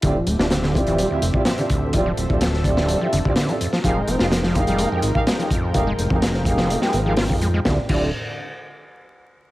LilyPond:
<<
  \new Staff \with { instrumentName = "Brass ensemble" } { \time 4/4 \key f \lydian \tempo 4 = 126 <c' e' f' g' d''>16 r8 <c' e' f' g' d''>16 r8 <c' e' f' g' d''>8. <c' e' f' g' e''>16 r16 <c' e' f' g' d''>16 r16 <c' e' f' g' d''>16 r8 | <c' e' f' g' d''>16 r8 <c' e' f' g' d''>16 r8 <c' e' f' g' d''>8. <c' e' f' g' e''>16 r16 <c' e' f' g' d''>16 r16 <c' e' f' g' d''>16 r8 | <ees' g' aes' bes' f''>16 r8 <ees' g' aes' bes' f''>16 r8 <ees' g' aes' bes' f''>8. <ees' g' aes' bes' g''>16 r16 <ees' g' aes' bes' f''>16 r16 <ees' g' aes' bes' f''>16 r8 | <ees' g' aes' bes' f''>16 r8 <ees' g' aes' bes' f''>16 r8 <ees' g' aes' bes' f''>8. <ees' g' aes' bes' g''>16 r16 <ees' g' aes' bes' f''>16 r16 <ees' g' aes' bes' f''>16 r8 |
<c' e' f' g' d''>16 r16 <c' e' f' g' d''>8 r2. | }
  \new Staff \with { instrumentName = "Analog synth pad" } { \time 4/4 \key f \lydian << { <d f c' e''>1~ | <d f c' e''>2.~ <d f c' e''>8 <f aes ees' g''>8~ | <f aes ees' g''>1~ | <f aes ees' g''>1 |
<d c' e' f' g'>8 r2. r8 | } \\ { g'1 | a'2.~ a'8 bes'8~ | bes'1~ | bes'1 |
r1 | } >> }
  \new Staff \with { instrumentName = "Acid bass" } { \clef bass \time 4/4 \key f \lydian d16 f16 a16 d'16 d16 d16 d'16 e16 g16 d,16 r8 f16 d16 d,8 | g16 f16 r8 f16 r16 d,16 d16 g16 f16 d16 d,16 d16 g16 f,16 f16 | f16 aes16 c'16 f'16 f16 f16 f'16 g16 bes16 f,16 r8 aes16 f16 f,8 | bes16 aes16 r8 aes16 r16 f,16 f16 bes16 aes16 c'16 f16 f'16 f,16 aes16 aes16 |
d16 r16 d8 r2. | }
  \new Staff \with { instrumentName = "Analog synth bass" } { \clef bass \time 4/4 \key f \lydian d,,16 r16 d,,16 d,,4. r16 f,,16 r4 r16 | d,,16 r16 d,,16 d,,4. r16 f,,16 r4 r16 | f,,16 r16 f,,16 f,,4. r16 aes,,16 r4 r16 | f,,16 r16 f,,16 f,,4. r16 aes,,8. f,8. |
d,,16 r16 d,,8 r2. | }
  \new DrumStaff \with { instrumentName = "Drums" } \drummode { \time 4/4 <hh bd>8 hh16 sn16 <hh sn>16 sn16 <hh bd>16 hh16 hh8 hh16 bd16 <hh sn>16 hh16 <hh bd>8 | <hh bd>8 hh16 bd16 <hh sn>16 sn16 <hh bd>16 sn16 hh8 hh16 bd16 <hh sn>16 hh16 hh16 sn16 | <hh bd>8 hh16 sn16 <hh sn>16 sn16 <hh bd>16 hh16 hh8 hh16 bd16 <hh sn>16 hh16 <hh bd>8 | <hh bd>8 hh16 bd16 <hh sn>16 sn16 <hh bd>16 sn16 hh16 sn16 hh8 <hho sn>16 bd16 hh8 |
<bd sn>8 <cymc bd>8 r4 r4 r4 | }
>>